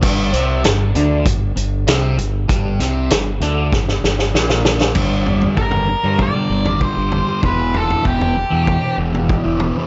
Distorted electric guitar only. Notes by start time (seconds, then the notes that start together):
0.01 G2 G3
0.32 C3 C4
0.64 G2
0.95 D3 D4
1.26 G2
1.56 G2
1.88 C3 C4
2.18 G2
2.48 G2 G3
2.80 C3 C4
3.11 G2
3.42 D3 D4
3.73 G2
4.04 G2
4.34 A#2 A#3
4.96 G2 D3 G3
5.26 G2 D3 G3
5.57 G2 D3 G3
5.72 D3 G3
5.88 muted distorted electric guitar stroke
6.04 D3 G3
6.34 D3 G3
6.50 G2 D3 G3
6.65 G2 D3 G3
6.97 D3 G3
7.12 G2 D3 G3
7.28 D3 G3
7.43 E2 B2 E3
7.74 E2 B2 E3
8.04 E2 B2 E3
8.20 B2 E3
8.36 muted distorted electric guitar stroke
8.50 B2 E3
8.81 B2 E3
8.97 E2 B2 E3
9.13 E2 B2 E3
9.44 B2 E3
9.59 E2 B2 E3
9.76 B2 E3